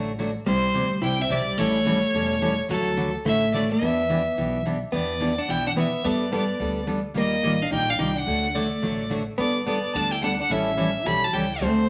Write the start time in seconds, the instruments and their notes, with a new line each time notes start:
Already playing: upright bass A1, steel-string acoustic guitar D3 F#3 A3 D4 F#4
0.19 steel-string acoustic guitar D3 F#3 A3 D4 F#4
0.46 upright bass C2, steel-string acoustic guitar C3 G3 C4 E4 G4, fiddle C5
0.74 upright bass D2, steel-string acoustic guitar C3 G3 C4 E4 G4
1.02 upright bass C2, steel-string acoustic guitar C3 G3 C4 E4 G4, fiddle G5
1.19 hollow-body jazz guitar C4, fiddle E5
1.29 upright bass B1, steel-string acoustic guitar C3 G3 C4 E4 G4, fiddle D5
1.58 upright bass A1, steel-string acoustic guitar E3 G3 C#4 E4 A4, hollow-body jazz guitar A3, fiddle C#5
1.86 steel-string acoustic guitar E3 G3 C#4 E4 A4
2.14 upright bass E1, steel-string acoustic guitar E3 G3 C#4 E4 A4
2.41 steel-string acoustic guitar E3 G3 C#4 E4 A4
2.69 upright bass D2, steel-string acoustic guitar D3 F#3 A3 E4 F#4, fiddle A4
2.97 steel-string acoustic guitar D3 F#3 A3 E4 F#4
3.25 upright bass A1, steel-string acoustic guitar D3 F#3 A3 E4 F#4, fiddle E5
3.53 steel-string acoustic guitar D3 F#3 A3 E4 F#4, fiddle D5
3.71 hollow-body jazz guitar B3, fiddle E5
3.81 upright bass E2, steel-string acoustic guitar E3 B3 D4 G4
4.09 steel-string acoustic guitar E3 B3 D4 G4
4.37 upright bass B1, steel-string acoustic guitar E3 B3 D4 G4
4.65 steel-string acoustic guitar E3 B3 D4 G4
4.92 upright bass E2, steel-string acoustic guitar E3 B3 D4 G4, fiddle D5
5.20 steel-string acoustic guitar E3 B3 D4 G4
5.38 hollow-body jazz guitar D4, fiddle F#5
5.48 upright bass B1, steel-string acoustic guitar E3 B3 D4 G4, hollow-body jazz guitar E4, fiddle G5
5.67 hollow-body jazz guitar D4, fiddle F#5
5.76 steel-string acoustic guitar E3 B3 D4 G4, fiddle E5
6.04 upright bass G2, steel-string acoustic guitar G3 B3 D4 A4, fiddle D5
6.32 steel-string acoustic guitar G3 B3 D4 A4, fiddle D5
6.59 upright bass D2, steel-string acoustic guitar G3 B3 D4 A4
6.87 steel-string acoustic guitar G3 B3 D4 A4
7.14 upright bass D#2, steel-string acoustic guitar D#3 G3 A#3 F4 G4
7.19 fiddle D#5
7.43 upright bass A1, steel-string acoustic guitar D#3 G3 A#3 F4 G4
7.62 hollow-body jazz guitar D4, fiddle F5
7.71 upright bass A#1, steel-string acoustic guitar D#3 G3 A#3 F4 G4, hollow-body jazz guitar D#4, fiddle G5
7.90 hollow-body jazz guitar D4, fiddle F5
7.98 upright bass C2, steel-string acoustic guitar D#3 G3 A#3 F4 G4, hollow-body jazz guitar D#4, fiddle G5
8.16 hollow-body jazz guitar D4, fiddle F#5
8.26 upright bass D2, steel-string acoustic guitar D3 F#3 A3 D4 F#4
8.55 steel-string acoustic guitar D3 F#3 A3 D4 F#4, fiddle D5
8.82 upright bass A1, steel-string acoustic guitar D3 F#3 A3 D4 F#4
9.10 steel-string acoustic guitar D3 F#3 A3 D4 F#4
9.38 upright bass G1, steel-string acoustic guitar G3 B3 D4 A4, fiddle D5
9.66 steel-string acoustic guitar G3 B3 D4 A4, fiddle D5
9.94 upright bass D2, steel-string acoustic guitar G3 B3 D4 A4, fiddle A5
10.11 hollow-body jazz guitar E4, fiddle G5
10.22 steel-string acoustic guitar G3 B3 D4 A4, fiddle F#5
10.40 hollow-body jazz guitar D4, fiddle F#5
10.50 upright bass A1, steel-string acoustic guitar E3 G3 C#4 E4 A4, fiddle E5
10.77 steel-string acoustic guitar E3 G3 C#4 E4 A4
11.05 upright bass B1, steel-string acoustic guitar E3 G3 C#4 E4 A4, hollow-body jazz guitar G4, fiddle B5
11.24 hollow-body jazz guitar F#4, fiddle A5
11.33 upright bass C#2, steel-string acoustic guitar E3 G3 C#4 E4 A4, fiddle G5
11.61 upright bass D2, steel-string acoustic guitar D3 A3 C4 F#4 A4, fiddle C5